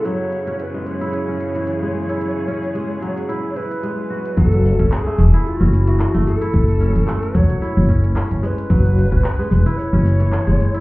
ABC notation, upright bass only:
X:1
M:4/4
L:1/16
Q:"Swing 16ths" 1/4=111
K:F#m
V:1 name="Upright bass" clef=bass
z16 | z16 | F,,,2 z F,,, z2 E,,, z2 F,,,2 z2 F,,, z2 | F,,,2 z F,,, z2 E,,, z2 F,,,2 z2 F,,, z2 |
F,,,2 z F,,, z2 E,,, z2 F,,,2 z2 F,,, z2 |]